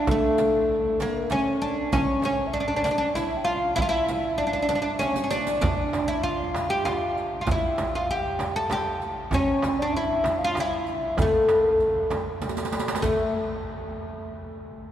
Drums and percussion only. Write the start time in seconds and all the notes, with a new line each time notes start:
0.07 riq, frame drum
0.38 riq, frame drum
1.00 riq, frame drum
1.30 riq, frame drum
1.61 riq
1.92 riq, frame drum
2.22 riq, frame drum
2.85 riq, frame drum
3.15 riq, frame drum
3.47 riq
3.77 riq, frame drum
4.08 riq, frame drum
4.39 riq
4.69 riq, frame drum
5.01 riq, frame drum
5.16 riq
5.31 riq
5.47 riq
5.61 riq, darbuka dum, frame drum
5.93 riq, darbuka tek, frame drum
6.24 darbuka ka
6.55 riq, darbuka tek, frame drum
6.85 riq, darbuka tek, frame drum
7.18 riq
7.47 riq, frame drum, darbuka dum
7.78 riq, darbuka tek, frame drum
8.09 darbuka ka
8.39 riq, darbuka tek, frame drum
8.70 riq, darbuka tek, frame drum
9.02 riq
9.31 riq, frame drum, darbuka dum
9.62 riq, darbuka tek, frame drum
9.93 darbuka ka
10.24 riq, darbuka tek, frame drum
10.55 riq, darbuka tek, frame drum
10.87 riq
11.17 riq, darbuka dum, frame drum
11.49 riq, darbuka tek, frame drum
11.80 riq, darbuka ka
12.11 riq, darbuka tek, frame drum
12.42 riq, darbuka tek, frame drum
12.49 riq, darbuka ka
12.57 riq, darbuka tek
12.65 riq, darbuka ka
12.72 riq, darbuka tek
12.80 riq, darbuka ka
12.88 riq, darbuka tek
12.95 riq, darbuka ka
13.03 riq, darbuka dum, frame drum